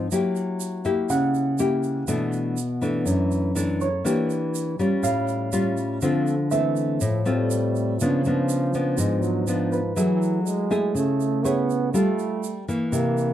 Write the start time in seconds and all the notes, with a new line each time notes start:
Already playing: D#5
0.11 F#3 A#3 E4 G4, shaker
0.36 shaker
0.60 shaker
0.85 A#3 E4 G4, shaker
1.10 C#3 F#5, shaker
1.34 shaker
1.58 A#3 E4 G4, shaker
1.83 shaker
2.08 B2 E3 A3 D4, shaker
2.32 shaker
2.57 shaker
2.82 E3 A3 D4, shaker
3.05 F#2, shaker
3.31 shaker
3.55 E3 A3 D4, shaker
3.81 C#5, shaker
4.04 E3 A#3 D4 G4, shaker
4.30 shaker
4.55 shaker
4.79 G3 C#4 F4, shaker
5.03 A2 F5, shaker
5.28 shaker
5.52 G3 C#4 F4, shaker
5.77 shaker
6.01 D3 F3 A3 C4 F4, shaker
6.27 shaker
6.51 E3 A3 C4 E5, shaker
6.76 shaker
7.01 A2 F3, shaker
7.25 G3 A3 C4 F4, shaker
7.51 shaker
7.76 shaker
7.99 C#3 F3 B3 D4, shaker
8.25 F3 B3 D4, shaker
8.49 shaker
8.74 F3 B3 D4, shaker
8.98 G#2 G#3, shaker
9.22 F#3, shaker
9.47 F3 B3 D4, shaker
9.72 B4, shaker
9.96 E3 F#3 A3 E4 G#4, shaker
10.22 shaker
10.45 G#3, shaker
10.71 A3 E4 G#4, shaker
10.95 C#3 A3, shaker
11.20 shaker
11.44 A3 B3 E4 G#4 C#5, shaker
11.70 shaker
11.93 G3 A3 F4 A4, shaker
12.19 shaker
12.44 shaker
12.68 E3 A#3, shaker
12.92 C3 A#3, shaker
13.18 shaker